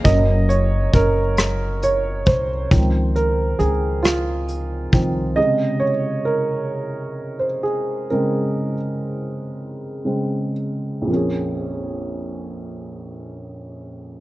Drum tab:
HH |xxxxxx|xxxxxx|------|------|
SD |---r--|---r--|------|------|
BD |o-o--o|o----o|------|------|

HH |------|
SD |------|
BD |------|